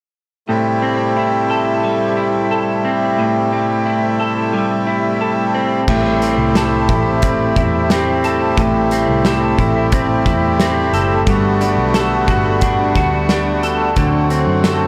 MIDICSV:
0, 0, Header, 1, 5, 480
1, 0, Start_track
1, 0, Tempo, 674157
1, 347, Time_signature, 4, 2, 24, 8
1, 10590, End_track
2, 0, Start_track
2, 0, Title_t, "Clean electric guitar"
2, 0, Program_c, 0, 27
2, 347, Note_on_c, 0, 45, 61
2, 586, Note_on_c, 0, 60, 47
2, 829, Note_on_c, 0, 64, 47
2, 1067, Note_on_c, 0, 69, 53
2, 1308, Note_on_c, 0, 55, 54
2, 1542, Note_off_c, 0, 64, 0
2, 1545, Note_on_c, 0, 64, 51
2, 1785, Note_off_c, 0, 69, 0
2, 1788, Note_on_c, 0, 69, 49
2, 2024, Note_off_c, 0, 60, 0
2, 2026, Note_on_c, 0, 60, 50
2, 2259, Note_off_c, 0, 45, 0
2, 2267, Note_on_c, 0, 45, 63
2, 2506, Note_off_c, 0, 60, 0
2, 2509, Note_on_c, 0, 60, 49
2, 2744, Note_off_c, 0, 64, 0
2, 2747, Note_on_c, 0, 64, 52
2, 2985, Note_off_c, 0, 69, 0
2, 2988, Note_on_c, 0, 69, 55
2, 3223, Note_off_c, 0, 55, 0
2, 3226, Note_on_c, 0, 55, 55
2, 3465, Note_off_c, 0, 64, 0
2, 3468, Note_on_c, 0, 64, 48
2, 3706, Note_off_c, 0, 69, 0
2, 3709, Note_on_c, 0, 69, 52
2, 3945, Note_off_c, 0, 60, 0
2, 3948, Note_on_c, 0, 60, 53
2, 4182, Note_off_c, 0, 45, 0
2, 4191, Note_on_c, 0, 45, 67
2, 4427, Note_off_c, 0, 60, 0
2, 4430, Note_on_c, 0, 60, 51
2, 4668, Note_off_c, 0, 69, 0
2, 4670, Note_on_c, 0, 69, 55
2, 4692, Note_off_c, 0, 55, 0
2, 4904, Note_off_c, 0, 64, 0
2, 4907, Note_on_c, 0, 64, 51
2, 5141, Note_off_c, 0, 60, 0
2, 5149, Note_on_c, 0, 60, 50
2, 5382, Note_off_c, 0, 64, 0
2, 5391, Note_on_c, 0, 64, 50
2, 5626, Note_off_c, 0, 60, 0
2, 5635, Note_on_c, 0, 60, 47
2, 5868, Note_off_c, 0, 69, 0
2, 5870, Note_on_c, 0, 69, 58
2, 6101, Note_off_c, 0, 45, 0
2, 6109, Note_on_c, 0, 45, 68
2, 6343, Note_off_c, 0, 60, 0
2, 6351, Note_on_c, 0, 60, 54
2, 6588, Note_off_c, 0, 69, 0
2, 6591, Note_on_c, 0, 69, 56
2, 6821, Note_off_c, 0, 64, 0
2, 6830, Note_on_c, 0, 64, 53
2, 7062, Note_off_c, 0, 60, 0
2, 7071, Note_on_c, 0, 60, 49
2, 7302, Note_off_c, 0, 64, 0
2, 7310, Note_on_c, 0, 64, 54
2, 7542, Note_off_c, 0, 60, 0
2, 7550, Note_on_c, 0, 60, 53
2, 7784, Note_off_c, 0, 69, 0
2, 7787, Note_on_c, 0, 69, 59
2, 8025, Note_on_c, 0, 55, 69
2, 8028, Note_off_c, 0, 45, 0
2, 8077, Note_off_c, 0, 60, 0
2, 8077, Note_off_c, 0, 64, 0
2, 8265, Note_on_c, 0, 62, 52
2, 8502, Note_off_c, 0, 69, 0
2, 8505, Note_on_c, 0, 69, 59
2, 8747, Note_on_c, 0, 66, 51
2, 8984, Note_off_c, 0, 62, 0
2, 8987, Note_on_c, 0, 62, 53
2, 9225, Note_off_c, 0, 66, 0
2, 9228, Note_on_c, 0, 66, 52
2, 9467, Note_off_c, 0, 62, 0
2, 9470, Note_on_c, 0, 62, 53
2, 9704, Note_off_c, 0, 69, 0
2, 9707, Note_on_c, 0, 69, 58
2, 9945, Note_off_c, 0, 55, 0
2, 9948, Note_on_c, 0, 50, 71
2, 10185, Note_off_c, 0, 62, 0
2, 10188, Note_on_c, 0, 60, 53
2, 10209, Note_off_c, 0, 66, 0
2, 10422, Note_off_c, 0, 69, 0
2, 10425, Note_on_c, 0, 69, 56
2, 10590, Note_off_c, 0, 50, 0
2, 10590, Note_off_c, 0, 60, 0
2, 10590, Note_off_c, 0, 69, 0
2, 10590, End_track
3, 0, Start_track
3, 0, Title_t, "Accordion"
3, 0, Program_c, 1, 21
3, 346, Note_on_c, 1, 48, 61
3, 346, Note_on_c, 1, 57, 56
3, 346, Note_on_c, 1, 64, 54
3, 347, Note_on_c, 1, 67, 67
3, 349, Note_on_c, 1, 55, 56
3, 4158, Note_off_c, 1, 48, 0
3, 4158, Note_off_c, 1, 57, 0
3, 4158, Note_off_c, 1, 64, 0
3, 4159, Note_off_c, 1, 67, 0
3, 4160, Note_off_c, 1, 55, 0
3, 4186, Note_on_c, 1, 67, 71
3, 4188, Note_on_c, 1, 48, 64
3, 4188, Note_on_c, 1, 55, 62
3, 4189, Note_on_c, 1, 57, 59
3, 4191, Note_on_c, 1, 64, 63
3, 7998, Note_off_c, 1, 67, 0
3, 7999, Note_off_c, 1, 48, 0
3, 8000, Note_off_c, 1, 64, 0
3, 8031, Note_on_c, 1, 50, 65
3, 8032, Note_on_c, 1, 66, 77
3, 8033, Note_on_c, 1, 59, 62
3, 9919, Note_off_c, 1, 55, 0
3, 9920, Note_off_c, 1, 57, 0
3, 9931, Note_off_c, 1, 59, 0
3, 9947, Note_on_c, 1, 54, 62
3, 9948, Note_on_c, 1, 60, 63
3, 9949, Note_on_c, 1, 57, 63
3, 10590, Note_off_c, 1, 50, 0
3, 10590, Note_off_c, 1, 54, 0
3, 10590, Note_off_c, 1, 57, 0
3, 10590, Note_off_c, 1, 60, 0
3, 10590, Note_off_c, 1, 66, 0
3, 10590, End_track
4, 0, Start_track
4, 0, Title_t, "Picked electric bass"
4, 0, Program_c, 2, 34
4, 4185, Note_on_c, 2, 33, 86
4, 4528, Note_off_c, 2, 33, 0
4, 4543, Note_on_c, 2, 36, 82
4, 4887, Note_off_c, 2, 36, 0
4, 4904, Note_on_c, 2, 33, 83
4, 5362, Note_off_c, 2, 33, 0
4, 5386, Note_on_c, 2, 40, 66
4, 6078, Note_off_c, 2, 40, 0
4, 6104, Note_on_c, 2, 33, 87
4, 6448, Note_off_c, 2, 33, 0
4, 6466, Note_on_c, 2, 36, 70
4, 6808, Note_off_c, 2, 36, 0
4, 6825, Note_on_c, 2, 33, 80
4, 7282, Note_off_c, 2, 33, 0
4, 7304, Note_on_c, 2, 40, 76
4, 7762, Note_off_c, 2, 40, 0
4, 7784, Note_on_c, 2, 30, 78
4, 8013, Note_off_c, 2, 30, 0
4, 8025, Note_on_c, 2, 31, 93
4, 8368, Note_off_c, 2, 31, 0
4, 8379, Note_on_c, 2, 35, 69
4, 8725, Note_off_c, 2, 35, 0
4, 8742, Note_on_c, 2, 31, 88
4, 9200, Note_off_c, 2, 31, 0
4, 9224, Note_on_c, 2, 38, 76
4, 9917, Note_off_c, 2, 38, 0
4, 9943, Note_on_c, 2, 38, 91
4, 10287, Note_off_c, 2, 38, 0
4, 10302, Note_on_c, 2, 42, 70
4, 10590, Note_off_c, 2, 42, 0
4, 10590, End_track
5, 0, Start_track
5, 0, Title_t, "Drums"
5, 4186, Note_on_c, 9, 36, 81
5, 4186, Note_on_c, 9, 49, 69
5, 4257, Note_off_c, 9, 49, 0
5, 4258, Note_off_c, 9, 36, 0
5, 4428, Note_on_c, 9, 42, 46
5, 4499, Note_off_c, 9, 42, 0
5, 4666, Note_on_c, 9, 38, 86
5, 4667, Note_on_c, 9, 42, 60
5, 4737, Note_off_c, 9, 38, 0
5, 4738, Note_off_c, 9, 42, 0
5, 4905, Note_on_c, 9, 36, 76
5, 4906, Note_on_c, 9, 42, 40
5, 4976, Note_off_c, 9, 36, 0
5, 4978, Note_off_c, 9, 42, 0
5, 5142, Note_on_c, 9, 42, 66
5, 5147, Note_on_c, 9, 36, 86
5, 5213, Note_off_c, 9, 42, 0
5, 5218, Note_off_c, 9, 36, 0
5, 5385, Note_on_c, 9, 36, 75
5, 5386, Note_on_c, 9, 42, 40
5, 5457, Note_off_c, 9, 36, 0
5, 5457, Note_off_c, 9, 42, 0
5, 5625, Note_on_c, 9, 38, 94
5, 5626, Note_on_c, 9, 42, 68
5, 5696, Note_off_c, 9, 38, 0
5, 5698, Note_off_c, 9, 42, 0
5, 5868, Note_on_c, 9, 42, 44
5, 5939, Note_off_c, 9, 42, 0
5, 6105, Note_on_c, 9, 36, 89
5, 6105, Note_on_c, 9, 42, 49
5, 6177, Note_off_c, 9, 36, 0
5, 6177, Note_off_c, 9, 42, 0
5, 6345, Note_on_c, 9, 42, 47
5, 6416, Note_off_c, 9, 42, 0
5, 6585, Note_on_c, 9, 38, 87
5, 6585, Note_on_c, 9, 42, 62
5, 6656, Note_off_c, 9, 38, 0
5, 6656, Note_off_c, 9, 42, 0
5, 6825, Note_on_c, 9, 36, 75
5, 6828, Note_on_c, 9, 42, 42
5, 6896, Note_off_c, 9, 36, 0
5, 6899, Note_off_c, 9, 42, 0
5, 7063, Note_on_c, 9, 42, 63
5, 7067, Note_on_c, 9, 36, 83
5, 7134, Note_off_c, 9, 42, 0
5, 7138, Note_off_c, 9, 36, 0
5, 7304, Note_on_c, 9, 36, 73
5, 7306, Note_on_c, 9, 42, 39
5, 7376, Note_off_c, 9, 36, 0
5, 7377, Note_off_c, 9, 42, 0
5, 7544, Note_on_c, 9, 38, 91
5, 7545, Note_on_c, 9, 42, 64
5, 7615, Note_off_c, 9, 38, 0
5, 7617, Note_off_c, 9, 42, 0
5, 7786, Note_on_c, 9, 42, 43
5, 7857, Note_off_c, 9, 42, 0
5, 8022, Note_on_c, 9, 42, 53
5, 8024, Note_on_c, 9, 36, 80
5, 8093, Note_off_c, 9, 42, 0
5, 8095, Note_off_c, 9, 36, 0
5, 8266, Note_on_c, 9, 42, 45
5, 8337, Note_off_c, 9, 42, 0
5, 8503, Note_on_c, 9, 38, 83
5, 8503, Note_on_c, 9, 42, 63
5, 8574, Note_off_c, 9, 38, 0
5, 8574, Note_off_c, 9, 42, 0
5, 8743, Note_on_c, 9, 36, 78
5, 8743, Note_on_c, 9, 42, 41
5, 8814, Note_off_c, 9, 36, 0
5, 8814, Note_off_c, 9, 42, 0
5, 8981, Note_on_c, 9, 42, 63
5, 8986, Note_on_c, 9, 36, 86
5, 9052, Note_off_c, 9, 42, 0
5, 9057, Note_off_c, 9, 36, 0
5, 9223, Note_on_c, 9, 42, 40
5, 9224, Note_on_c, 9, 36, 75
5, 9294, Note_off_c, 9, 42, 0
5, 9295, Note_off_c, 9, 36, 0
5, 9463, Note_on_c, 9, 38, 97
5, 9464, Note_on_c, 9, 42, 69
5, 9534, Note_off_c, 9, 38, 0
5, 9536, Note_off_c, 9, 42, 0
5, 9706, Note_on_c, 9, 42, 45
5, 9778, Note_off_c, 9, 42, 0
5, 9941, Note_on_c, 9, 42, 51
5, 9944, Note_on_c, 9, 36, 83
5, 10012, Note_off_c, 9, 42, 0
5, 10015, Note_off_c, 9, 36, 0
5, 10184, Note_on_c, 9, 42, 44
5, 10255, Note_off_c, 9, 42, 0
5, 10423, Note_on_c, 9, 38, 84
5, 10424, Note_on_c, 9, 42, 63
5, 10494, Note_off_c, 9, 38, 0
5, 10495, Note_off_c, 9, 42, 0
5, 10590, End_track
0, 0, End_of_file